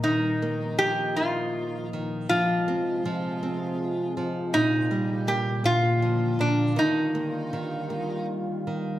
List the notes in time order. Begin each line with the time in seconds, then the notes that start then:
0.04 A#2 D#3 F3 D#4
0.42 A#3
0.79 D#3 G4
1.16 A#3 F4
1.93 D#3
2.29 C3 F3 G#3 F4
2.68 C4
3.05 F3
3.43 C4
4.17 F3
4.53 A#2 D#3 A#3 D#4 G4
4.91 G3
5.27 A#3 G4
5.64 A#2 D3 F4
6.02 F3
6.39 A#2 D4
6.76 D#3 G3 D#4
7.15 A#3
7.53 D#3
7.90 A#3
8.67 D#3